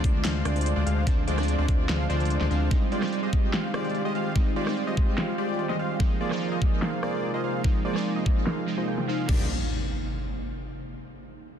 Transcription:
Already playing: ambient pad C3 F3 D4, synth keys F3 G#3 C4 D4
0.04 analog synth bass D2, analog polysynth G#3 D4 F4 C5 D5, kick, closed hi-hat
0.25 analog synth bass D2, analog polysynth G#3 D4 F4 C5 F5, snare, closed hi-hat
0.45 analog synth bass D2, analog polysynth G#3 D4 F4 C5 D5, cross-stick, closed hi-hat
0.56 closed hi-hat
0.61 closed hi-hat
0.66 closed hi-hat
0.76 analog synth bass D2, analog polysynth G#3 D4 F4 C5 D5
0.86 analog synth bass D2, analog polysynth G#3 D4 F4 C5 F5, closed hi-hat
1.06 analog synth bass D2, synth keys F3 G#3 C4 D4, analog polysynth G#3 D4 F4 C5 D5, kick, closed hi-hat
1.27 analog synth bass D2, analog polysynth G#3 D4 F4 C5 D5, closed hi-hat
1.36 synth keys F3 G#3 C4 D4, cross-stick, closed hi-hat
1.43 closed hi-hat
1.48 closed hi-hat
1.58 analog synth bass D2, analog polysynth G#3 D4 F4 C5 D5
1.68 analog synth bass D2, analog polysynth G#3 D4 F4 C5 D5, kick, closed hi-hat
1.89 analog synth bass D2, analog polysynth G#3 D4 F4 C5 F5, snare, closed hi-hat
2.09 analog synth bass D2, synth keys F3 G#3 C4 D4, analog polysynth G#3 D4 F4 C5 D5, closed hi-hat
2.20 closed hi-hat
2.25 closed hi-hat
2.30 closed hi-hat
2.41 analog synth bass D2, analog polysynth G#3 D4 F4 C5 D5, snare
2.50 analog synth bass D2, synth keys F3 G#3 C4 D4, analog polysynth G#3 D4 F4 C5 F5, closed hi-hat
2.70 ambient pad D#3 F4 G4, synth keys G3 G#3 C4 D#4, analog polysynth G#3 F4 G4 C5 D#5, kick, closed hi-hat
2.92 analog polysynth G#3 F4 G4 C5 D5, closed hi-hat
3.00 synth keys G3 G#3 C4, cross-stick, snare, closed hi-hat
3.04 synth keys D#4, closed hi-hat
3.13 closed hi-hat
3.23 analog polysynth G#3 F4 G4 C5 D#5
3.33 analog polysynth G#3 F4 G4 C5 D#5, kick, closed hi-hat
3.53 analog polysynth G#3 F4 G4 C5 F5, snare, closed hi-hat
3.74 analog polysynth G#3 F4 G4 C5 D5, cross-stick, closed hi-hat
3.85 closed hi-hat
3.90 closed hi-hat
3.95 closed hi-hat
4.05 analog polysynth G#3 F4 G4 C5 D#5
4.15 analog polysynth G#3 F4 G4 C5 F5, closed hi-hat
4.35 synth keys G3 G#3 C4 D#4, analog polysynth G#3 F4 G4 C5 D#5, kick, closed hi-hat
4.56 analog polysynth G#3 F4 G4 C5 D5, closed hi-hat
4.65 synth keys G3 G#3 C4, cross-stick, closed hi-hat
4.69 synth keys D#4, closed hi-hat
4.77 closed hi-hat
4.87 analog polysynth G#3 F4 G4 C5 D#5
4.97 analog polysynth G#3 F4 G4 C5 D#5, kick
5.18 analog polysynth G#3 F4 G4 C5 F5, snare, closed hi-hat
5.38 analog polysynth G#3 F4 G4 C5 D5, closed hi-hat
5.49 closed hi-hat
5.54 closed hi-hat
5.59 closed hi-hat
5.69 analog polysynth G#3 F4 G4 C5 D#5, snare
5.79 analog polysynth G#3 F4 G4 C5 F5, closed hi-hat
5.99 ambient pad C3 A#3 D#4, synth keys F3 G#3 C4 D#4, analog polysynth A#3 F4 G#4 C5 D#5, kick
6.21 analog polysynth A#3 F4 G#4 C5 D5, closed hi-hat
6.29 synth keys F3 G#3 C4, cross-stick, snare, closed hi-hat
6.33 synth keys D#4, closed hi-hat
6.41 closed hi-hat
6.52 analog polysynth A#3 F4 G#4 C5 D#5
6.62 analog polysynth A#3 F4 G#4 C5 D#5, kick
6.82 analog polysynth A#3 F4 G#4 C5 F5, snare, closed hi-hat
7.03 analog polysynth A#3 F4 G#4 C5 D5, cross-stick, closed hi-hat
7.13 closed hi-hat
7.18 closed hi-hat
7.23 closed hi-hat
7.34 analog polysynth A#3 F4 G#4 C5 D#5
7.44 analog polysynth A#3 F4 G#4 C5 F5, closed hi-hat
7.63 synth keys F3 G#3 C4 D#4, analog polysynth A#3 F4 G#4 C5 D#5, kick
7.85 analog polysynth A#3 F4 G#4 C5 D5, closed hi-hat
7.93 synth keys F3 G#3 C4, cross-stick
7.97 synth keys D#4
8.16 analog polysynth A#3 F4 G#4 C5 D#5
8.26 analog polysynth A#3 F4 G#4 C5 D#5, kick
8.47 analog polysynth A#3 F4 G#4 C5 F5, snare, closed hi-hat
8.66 synth keys F3 G#3 C4 D#4, closed hi-hat
8.78 analog polysynth A#3 F4 G#4 C5 D#5, closed hi-hat
8.83 closed hi-hat
8.88 analog polysynth A#3 F4 G#4 C5 G5, closed hi-hat
8.98 snare
9.07 synth keys F3 G#3 C4 D#4, analog polysynth A#3 F4 G#4 C5 F5
9.26 analog synth bass C2, synth keys D#3 G3 A#3, analog polysynth A#3 D#4 G4 C5 D5, kick, crash, impact
9.32 synth keys D4

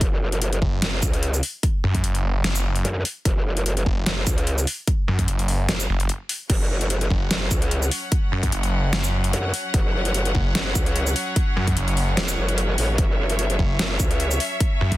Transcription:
0.01 wobble bass F#1, kick, closed hi-hat
0.32 closed hi-hat
0.42 closed hi-hat
0.53 closed hi-hat
0.62 detuned saw bass F#1, kick
0.82 wobble bass F#1, snare, closed hi-hat
1.02 wobble bass C#2, kick, shaker
1.13 closed hi-hat
1.23 closed hi-hat
1.34 shaker
1.43 open hi-hat
1.63 kick, closed hi-hat
1.83 detuned saw bass F#2
1.95 kick, closed hi-hat
2.04 detuned saw bass F#1, closed hi-hat
2.15 closed hi-hat
2.44 detuned saw bass F#1, snare, closed hi-hat
2.55 shaker
2.76 closed hi-hat
2.85 wobble bass F#2, closed hi-hat
3.05 open hi-hat
3.25 wobble bass F#1, kick, closed hi-hat
3.57 closed hi-hat
3.66 closed hi-hat
3.77 closed hi-hat
3.86 detuned saw bass F#1, kick
4.06 wobble bass F#1, snare, closed hi-hat
4.27 wobble bass C#2, kick, shaker
4.38 closed hi-hat
4.47 closed hi-hat
4.58 shaker
4.67 open hi-hat
4.87 kick, closed hi-hat
5.08 detuned saw bass F#2
5.19 kick, closed hi-hat
5.28 detuned saw bass F#1, closed hi-hat
5.39 closed hi-hat
5.48 open hi-hat
5.69 wobble bass F#1, snare, closed hi-hat
5.80 shaker
5.89 detuned saw bass F#1
6.00 closed hi-hat
6.09 closed hi-hat
6.29 open hi-hat
6.50 wobble bass F#1, string section F#3 C#4 C#5 F#5, kick, closed hi-hat, crash
6.81 closed hi-hat
6.90 closed hi-hat
7.01 closed hi-hat
7.10 detuned saw bass F#1, kick
7.31 wobble bass F#1, snare, closed hi-hat
7.51 wobble bass C#2, kick, shaker
7.62 closed hi-hat
7.71 closed hi-hat
7.82 shaker
7.91 open hi-hat
8.12 kick, closed hi-hat
8.32 detuned saw bass F#2
8.43 kick, closed hi-hat
8.52 detuned saw bass F#1, closed hi-hat
8.63 closed hi-hat
8.93 detuned saw bass F#1, snare, closed hi-hat
9.04 shaker
9.24 closed hi-hat
9.33 wobble bass F#2, closed hi-hat
9.54 open hi-hat
9.74 wobble bass F#1, kick, closed hi-hat
10.05 closed hi-hat
10.14 closed hi-hat
10.25 closed hi-hat
10.35 detuned saw bass F#1, kick
10.55 wobble bass F#1, snare, closed hi-hat
10.75 wobble bass C#2, kick, shaker
10.86 closed hi-hat
10.96 closed hi-hat
11.07 shaker
11.16 open hi-hat
11.36 kick, closed hi-hat
11.56 detuned saw bass F#2
11.67 kick, closed hi-hat
11.77 detuned saw bass F#1, closed hi-hat
11.88 closed hi-hat
11.97 open hi-hat
12.17 wobble bass E1, snare, closed hi-hat
12.28 shaker
12.38 wobble bass F#1
12.49 closed hi-hat
12.58 closed hi-hat
12.78 wobble bass A1, open hi-hat
12.98 wobble bass F#1, string section E5, kick, closed hi-hat
13.30 closed hi-hat
13.39 closed hi-hat
13.50 closed hi-hat
13.59 detuned saw bass F#1, kick
13.79 wobble bass F#1, snare, closed hi-hat
14.00 wobble bass C#2, kick, shaker
14.11 closed hi-hat
14.20 closed hi-hat
14.31 shaker
14.40 open hi-hat
14.60 kick, closed hi-hat
14.81 detuned saw bass F#2
14.92 kick, closed hi-hat

